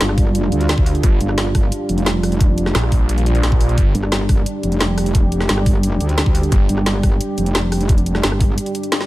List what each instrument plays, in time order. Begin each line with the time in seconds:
Already playing: analog synth pad G3 D4 F4
0.01 wobble bass G1, snare, closed hi-hat
0.09 cross-stick
0.18 kick, open hi-hat
0.35 closed hi-hat
0.52 wobble bass D2, closed hi-hat
0.61 closed hi-hat
0.69 snare, closed hi-hat
0.78 kick
0.86 open hi-hat
0.95 closed hi-hat
1.03 detuned saw bass G1, kick, closed hi-hat
1.21 wobble bass G1, closed hi-hat
1.29 cross-stick
1.38 snare, closed hi-hat
1.55 kick, cross-stick, open hi-hat
1.72 closed hi-hat
1.89 wobble bass F1, closed hi-hat
1.98 closed hi-hat
2.06 snare, closed hi-hat
2.23 cross-stick, open hi-hat
2.32 closed hi-hat
2.41 kick, closed hi-hat
2.58 closed hi-hat
2.66 cross-stick, snare
2.75 detuned saw bass A#1, snare, closed hi-hat
2.83 cross-stick
2.92 kick, open hi-hat
3.09 closed hi-hat
3.18 closed hi-hat
3.26 closed hi-hat
3.35 closed hi-hat
3.43 snare, closed hi-hat
3.52 kick
3.61 open hi-hat
3.69 closed hi-hat
3.78 detuned saw bass G1, analog synth pad G4, kick, closed hi-hat
3.95 wobble bass G1, closed hi-hat
4.03 cross-stick
4.12 snare, closed hi-hat
4.29 kick, cross-stick, open hi-hat
4.46 closed hi-hat
4.63 wobble bass F1, closed hi-hat
4.72 closed hi-hat
4.81 snare, closed hi-hat
4.98 cross-stick, open hi-hat
5.06 closed hi-hat
5.15 kick, closed hi-hat
5.32 closed hi-hat
5.41 cross-stick, snare
5.49 wobble bass G1, snare, closed hi-hat
5.58 cross-stick
5.66 kick, open hi-hat
5.83 closed hi-hat
6.01 wobble bass D2, closed hi-hat
6.09 closed hi-hat
6.18 snare, closed hi-hat
6.26 kick
6.35 open hi-hat
6.43 closed hi-hat
6.52 detuned saw bass G1, kick, closed hi-hat
6.69 wobble bass G1, closed hi-hat
6.78 cross-stick
6.86 snare, closed hi-hat
7.03 kick, cross-stick, open hi-hat
7.21 closed hi-hat
7.38 wobble bass F1, closed hi-hat
7.46 closed hi-hat
7.55 snare, closed hi-hat
7.72 cross-stick, open hi-hat
7.81 closed hi-hat
7.89 kick, closed hi-hat
7.98 closed hi-hat
8.06 closed hi-hat
8.15 cross-stick, snare
8.23 wobble bass G1, snare, closed hi-hat
8.32 cross-stick
8.41 kick, open hi-hat
8.58 closed hi-hat
8.66 closed hi-hat
8.75 closed hi-hat
8.83 closed hi-hat
8.92 snare, closed hi-hat
9.01 snare